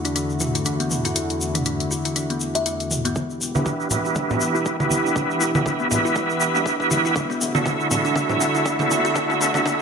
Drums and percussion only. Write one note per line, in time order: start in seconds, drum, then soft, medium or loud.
0.05 closed hi-hat soft
0.05 shaker soft
0.16 closed hi-hat soft
0.16 shaker soft
0.30 shaker soft
0.40 mid tom medium
0.40 shaker medium
0.55 closed hi-hat soft
0.55 shaker soft
0.65 closed hi-hat medium
0.65 shaker soft
0.80 closed hi-hat soft
0.80 shaker soft
0.91 mid tom medium
0.91 shaker medium
1.05 closed hi-hat soft
1.05 shaker soft
1.16 closed hi-hat medium
1.16 shaker soft
1.30 closed hi-hat soft
1.30 shaker soft
1.41 shaker medium
1.55 closed hi-hat soft
1.55 mid tom medium
1.55 shaker soft
1.65 closed hi-hat medium
1.65 shaker soft
1.80 closed hi-hat soft
1.80 shaker soft
1.91 shaker medium
2.05 closed hi-hat soft
2.05 shaker soft
2.16 closed hi-hat medium
2.16 shaker soft
2.30 closed hi-hat soft
2.30 shaker soft
2.40 shaker medium
2.55 closed hi-hat soft
2.55 shaker soft
2.66 closed hi-hat medium
2.66 shaker soft
2.80 closed hi-hat soft
2.80 shaker soft
2.91 mid tom medium
2.91 shaker medium
3.05 closed hi-hat soft
3.05 shaker soft
3.16 kick loud
3.16 mid tom soft
3.16 high conga medium
3.16 shaker soft
3.30 shaker soft
3.41 shaker medium
3.55 mid tom soft
3.55 high conga medium
3.55 shaker soft
3.66 kick loud
3.66 high conga medium
3.66 shaker soft
3.80 shaker soft
3.91 mid tom soft
3.91 low conga medium
3.91 shaker medium
4.05 shaker soft
4.15 kick loud
4.15 mid tom soft
4.15 high conga medium
4.15 shaker medium
4.30 low conga loud
4.30 shaker soft
4.41 shaker medium
4.55 shaker soft
4.66 kick loud
4.66 shaker medium
4.80 kick medium
4.80 high conga medium
4.80 shaker soft
4.91 mid tom medium
4.91 high conga medium
4.91 shaker medium
5.06 shaker soft
5.16 kick loud
5.16 mid tom medium
5.16 high conga medium
5.16 shaker medium
5.31 shaker soft
5.41 shaker medium
5.55 high conga loud
5.55 shaker soft
5.66 kick loud
5.66 high conga medium
5.66 shaker medium
5.79 shaker soft
5.91 mid tom medium
5.91 low conga medium
5.91 shaker loud
6.06 shaker soft
6.16 kick loud
6.16 mid tom medium
6.16 shaker medium
6.30 shaker soft
6.40 shaker medium
6.55 mid tom medium
6.55 shaker soft
6.66 kick loud
6.66 shaker medium
6.80 kick medium
6.80 shaker soft
6.91 mid tom medium
6.91 high conga medium
6.91 shaker medium
7.05 shaker soft
7.16 kick loud
7.16 mid tom medium
7.16 high conga medium
7.16 shaker soft
7.31 shaker soft
7.41 mid tom medium
7.41 shaker loud
7.55 high conga loud
7.55 shaker soft
7.66 kick loud
7.66 mid tom medium
7.66 high conga loud
7.66 shaker medium
7.80 shaker soft
7.91 mid tom medium
7.91 low conga medium
7.91 shaker loud
8.05 shaker soft
8.15 kick loud
8.15 mid tom medium
8.15 high conga medium
8.15 shaker medium
8.30 low conga loud
8.30 shaker soft
8.41 mid tom medium
8.41 shaker medium
8.55 shaker soft
8.66 kick loud
8.66 mid tom medium
8.66 shaker medium
8.79 kick medium
8.79 high conga loud
8.79 shaker soft
8.91 mid tom medium
8.91 high conga medium
8.91 shaker medium
9.05 shaker soft
9.16 kick loud
9.16 mid tom medium
9.16 high conga medium
9.16 shaker medium
9.30 mid tom medium
9.30 shaker soft
9.41 mid tom medium
9.41 shaker medium
9.54 mid tom medium
9.54 high conga loud
9.54 shaker soft
9.66 kick loud
9.66 mid tom loud
9.66 high conga medium
9.66 shaker soft